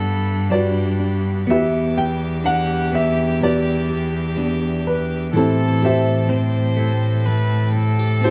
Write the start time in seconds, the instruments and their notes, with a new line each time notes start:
Already playing: nylon-string guitar G2 B3 D4, cello G2, string section G3 F#5 B5, grand piano A4 D5 F#5, viola A4
0.50 nylon-string guitar G3, clean electric guitar D4, grand piano F#4 B4 D5, viola G4
0.99 nylon-string guitar D4
1.47 cello E2, nylon-string guitar E2 B3, clean electric guitar B3, viola G4, grand piano B4 E5, string section E5 D6
1.51 grand piano G4
1.98 nylon-string guitar G4, grand piano G5
2.44 nylon-string guitar E3, clean electric guitar D4, grand piano F#5
2.92 clean electric guitar B3, nylon-string guitar D4, grand piano E5
3.41 nylon-string guitar B2 B3, grand piano G4 B4 D5
3.89 nylon-string guitar G4
4.37 nylon-string guitar E3 B3, clean electric guitar D4
4.87 nylon-string guitar D4, grand piano B4
5.32 cello A2, nylon-string guitar A2 E3 C4 E4, clean electric guitar E3, viola A4, string section A4 G5 A5, grand piano A4
5.37 grand piano C4 E4, nylon-string guitar G4
5.82 nylon-string guitar G4, grand piano G4 C5 E5
6.29 nylon-string guitar E3, clean electric guitar C4, viola C5
6.77 clean electric guitar A3, nylon-string guitar E4
7.25 nylon-string guitar E3, viola B4
7.67 viola B4
7.72 nylon-string guitar E4, viola A4
7.99 nylon-string guitar G4
8.21 clean electric guitar C4, grand piano C5
8.25 grand piano E4 G4